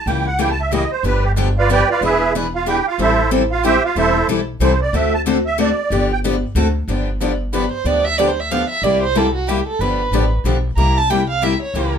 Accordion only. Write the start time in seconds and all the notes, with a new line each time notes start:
0.07 G5
0.26 F#5
0.39 G5
0.51 A5
0.61 E5
0.73 D#5
0.91 C5
1.06 B4
1.24 G4
1.58 F4 B4 D5 F5
1.72 G4 B4 D5 G5
1.90 F4 B4 D5 F5
2.04 E4 G#4 B4 E5
2.55 F4 F5
2.68 G4 G5
2.88 F4 F5
3.01 E4 A4 C5 E5
3.51 F4 F5
3.65 G4 C5 E5 G5
3.85 F4 F5
3.98 E4 A4 C5 E5
4.62 C5
4.82 D5
4.96 E5
5.14 A5
5.46 E5
5.60 D5
6.12 G5